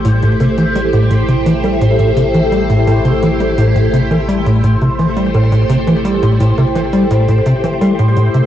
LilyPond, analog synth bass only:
\new Staff \with { instrumentName = "Analog synth bass" } { \clef bass \time 4/4 \key a \dorian \tempo 4 = 85 a,16 a,16 c16 e16 g16 a,16 a,16 c16 e16 g16 a,16 a,16 c16 e16 g16 a,16 | a,16 c16 e16 g16 a,16 a,16 c16 e16 g16 a,16 a,16 c16 e16 g16 a,16 a,16 | c16 e16 g16 a,16 a,16 c16 e16 g16 a,16 a,16 c16 e16 g16 a,16 a,16 c16 | }